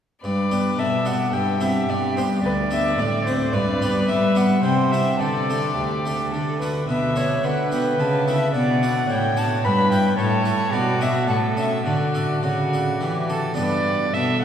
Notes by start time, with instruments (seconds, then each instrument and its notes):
0.23 cello G2, harpsichord G2, violin B4 D5
0.51 harpsichord B3 D4 G4
0.79 harpsichord B2, cello B2, violin A4 E5
1.05 harpsichord B3 D4 G4, violin F#5
1.33 harpsichord G2, cello G2, violin G4 G5
1.61 harpsichord C4 E4 G4, violin E5
1.88 cello G2, harpsichord G2, violin D5
2.17 harpsichord B3 D4 G4, violin C5
2.42 cello D2, harpsichord D2, violin B4 D5
2.71 harpsichord B3 D4 G4, violin E5
2.98 cello A2, harpsichord A2, violin D5
3.25 harpsichord C4 F#4, violin C5
3.52 cello G2, harpsichord G2, violin B4 D5
3.82 harpsichord B3 D4 G4
4.08 cello G3, harpsichord G3, violin E5
4.35 harpsichord B3 D4 G4, violin F#5
4.63 cello C3, harpsichord C3, violin C5 G5
4.91 harpsichord C4 E4 G4, violin E5
5.19 cello D3, harpsichord D3, violin A4 D5
5.50 harpsichord A3 D4 G4
5.75 cello D2, harpsichord D2, violin G4
6.06 harpsichord A3 D4 G4
6.32 cello D3, harpsichord D3, violin A4
6.60 harpsichord A3 D4 F#4, violin B4
6.87 cello B2, harpsichord B2, violin B4 E5
7.16 harpsichord B3 D4 F#4, violin C#5
7.44 harpsichord D3, cello D3, violin B4 F#5
7.72 harpsichord B3 D4 F#4, violin G5
7.99 harpsichord C#3, cello C#3, violin A5
8.27 harpsichord A3 E4 A4, violin E5
8.55 harpsichord B2, cello B2, violin D5 F#5
8.83 harpsichord D4 F#4 B4
9.09 cello A2, harpsichord A2, violin C#5 G5
9.37 harpsichord D4 F#4 B4, violin A5
9.64 cello G2, harpsichord G2, violin B4 B5
9.92 harpsichord E4 B4, violin G5
10.18 cello A2, harpsichord A2, violin A4 C#5
10.45 harpsichord E4 A4
10.72 harpsichord B2, cello B2, violin F#4 D5
11.01 harpsichord B3 D4 F#4, violin E5
11.27 harpsichord A2, cello A2, violin A4 F#5
11.57 harpsichord C#4 A4, violin E5
11.85 cello D3, harpsichord D3, violin F#4 D5
12.15 harpsichord D4 A4
12.43 harpsichord C#3, cello C#3, violin F#4
12.73 harpsichord D4 A4
13.01 harpsichord E3, cello E3, violin G4
13.30 harpsichord D4 A4, violin A4
13.54 harpsichord B3 D4 G4, violin B4 D5
13.58 harpsichord G2, cello G2
14.14 harpsichord B2, cello B2, violin A4 E5